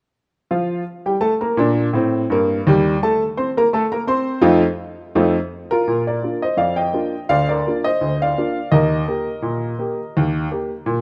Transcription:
0.51 F3 F4 F5
1.06 G3 G4 G5
1.21 A3 A4 A5
1.41 A#3 A#4 A#5
1.57 A#2 D4
1.93 A2 C4
2.30 G2 A#3
2.67 D#2 G3
3.03 A3 A4 A5
3.37 C4 C5 C6
3.57 A#3 A#4 A#5
3.73 A3 A4 A5
3.92 A#3 A#4 A#5
4.07 C4 C5 C6
4.41 F2 A3 D#4 F4
5.15 F2 A3 D#4 F4
5.71 F4 A#4
5.88 A#2
6.07 A#4 D5
6.22 A#3 D4 F4
6.42 C5 D#5
6.57 F2 D5 F5
6.76 D#5 G5
6.93 A#3 D4 F4
7.29 D2 D5 F5
7.49 A#4 D5
7.67 A#3 D4 F4
7.84 C5 D#5
8.01 D2
8.22 D5 F5
8.37 A#3 D4 F4
8.72 D#2 A#4 D#5
9.08 A#3 G4
9.42 A#2
9.79 A#3 G4
10.17 D#2
10.51 A#3 G4
10.86 A#2

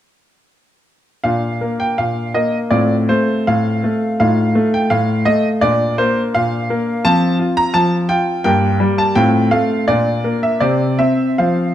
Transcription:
1.24 A#2 D4 F4 F5
1.61 A#3
1.80 G5
1.98 A#2 F5
2.34 A#3 D#5
2.71 A2 C4 F4 D5
3.09 A3 C5
3.47 A2 F5
3.84 A3
4.20 A2 D#4 F4 F5
4.55 A3
4.74 G5
4.90 A2 F5
5.25 A3 D#5
5.61 A#2 D4 F4 D5
5.98 A#3 C5
6.34 A#2 F5
6.70 A#3
7.05 F3 C4 F4 A5
7.39 F4
7.57 A#5
7.74 F3 A5
8.09 F4 G5
8.44 G2 A#3 A#4 G5
8.80 G3
8.98 A5
9.15 A2 C4 F4 G5
9.51 A3 F5
9.88 A#2 D4 F4 D5
10.24 A#3
10.43 E5
10.60 C3 C4 C5 D5
10.99 C4 E5
11.38 F3 C4 C5 F5

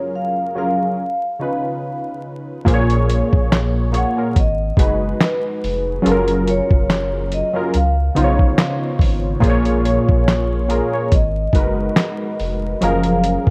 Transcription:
Already playing: F#3 C#4 F4 G#4 A#4 C#5
0.15 F5
0.55 F#3 C#4 F4 G#4 A#4 F5
1.39 C#3 C#4 D#4 F4 B4
2.65 A#1 A#2 A#3 F4 G#4 C5, kick, closed hi-hat
2.74 C#5
2.90 closed hi-hat
3.10 closed hi-hat
3.33 A#1, kick
3.52 snare, clap, closed hi-hat
3.92 A#2 A#3 F4 G#4 C#5, closed hi-hat
3.97 F#5
4.16 A#2 A#3 F4 G#4 A#4
4.36 G#1 D#5, kick, closed hi-hat
4.77 F#1 G#3 D#4 F#4 G#4 B4, kick, closed hi-hat
5.21 B4, snare, clap, closed hi-hat
5.64 F1, open hi-hat
6.02 F#1 F#3 C#4 F4 G#4 A4, closed hi-hat
6.07 A#4
6.11 A#4
6.28 closed hi-hat
6.47 C#5, closed hi-hat
6.71 F#1, kick
6.90 snare, clap, closed hi-hat
7.32 D#5, closed hi-hat
7.53 F#3 C#4 F4 G#4 A#4
7.74 C#2 F5, closed hi-hat
8.15 B1 C#3 B3 D#4 F4 C5, closed hi-hat
8.24 C#5
8.39 kick
8.58 snare, clap, closed hi-hat
8.99 G#1, kick, open hi-hat
9.40 A#1 A#2 A#3 F4 G#4 C5, kick, closed hi-hat
9.46 C#5
9.65 closed hi-hat
9.85 closed hi-hat
10.09 A#1, kick
10.28 snare, clap, closed hi-hat
10.68 A#2 A#3 F4 G#4 A#4, closed hi-hat
10.91 A#2 A#3 F4 G#4 C#5
11.12 G#1 D#5, kick, closed hi-hat
11.53 F#1 G#3 D#4 F#4 A#4 B4, kick, closed hi-hat
11.96 snare, clap, closed hi-hat
12.40 F1, open hi-hat
12.81 F#1 F3 F#3 C#4 G#4 A#4 F5, closed hi-hat
13.03 closed hi-hat
13.24 closed hi-hat
13.47 kick

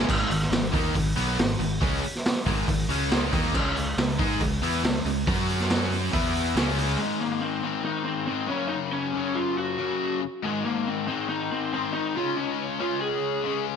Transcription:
0.08 G#1 G#2 D#3 G#3, kick, crash
0.28 G#1 G#2 D#3, open hi-hat
0.42 snare
0.50 G#1 G#2 D#3, snare, open hi-hat
0.64 snare
0.72 D#2 D#3 A#3 D#4, kick, open hi-hat
0.94 G#1 G#2 D#3, kick, open hi-hat
1.16 B1 B2 F#3 B3, open hi-hat
1.38 G#1 G#2 D#3, snare, open hi-hat
1.59 G#1 G#2 D#3, open hi-hat
1.81 C#2 C#3 G#3 C#4, kick, open hi-hat
2.04 open hi-hat
2.15 snare
2.25 snare, open hi-hat
2.46 G#1 G#2 D#3 G#3, kick, open hi-hat
2.68 G#1 G#2 D#3, kick, open hi-hat
2.89 C#2 C#3 G#3 C#4, open hi-hat
3.11 snare, open hi-hat
3.33 D#2 D#3 A#3 D#4, kick, open hi-hat
3.54 C#2 C#3 G#3 C#4, kick, crash
3.76 C#2 C#3 G#3, open hi-hat
3.97 C#2 C#3 G#3, snare, open hi-hat
4.19 G#2 G#3 D#4 G#4, kick, open hi-hat
4.40 C#2 C#3 G#3, kick, open hi-hat
4.62 E2 E3 B3 E4, open hi-hat
4.84 C#2 C#3 G#3, snare, open hi-hat
5.05 C#2 C#3 G#3, open hi-hat
5.27 F#2 F#3 C#4 F#4, kick, open hi-hat
5.49 open hi-hat
5.60 snare
5.70 snare, open hi-hat
5.92 open hi-hat
6.13 E2 E3 B3 E4, kick, open hi-hat
6.35 open hi-hat
6.55 C#2 C#3 G#3 C#4, snare, open hi-hat
6.78 open hi-hat
6.98 G#2 D#3 G#3
7.02 G#3
7.21 A#3
7.41 C4
7.63 G#2 D#3 G#3 C4
7.85 D#4
8.05 C4
8.27 G#2 D#3 G#3 C4
8.48 F#2 C#3 F#3 C#4
8.68 D#4
8.93 C#4
9.13 F#2 C#3 F#3
9.35 F4
9.58 F#4
9.78 F#2 C#3 F#3
10.43 G#2 D#3 G#3
10.65 A#3
10.87 C4
11.08 G#2 D#3 G#3 C4
11.29 D#4
11.52 C4
11.72 G#2 D#3 G#3 C4
11.94 D#4
12.16 C#3 G#3 C#4 F4
12.36 C#4
12.80 C#3 G#3 C#4 F4
13.01 G#4
13.44 C#3 G#3 C#4

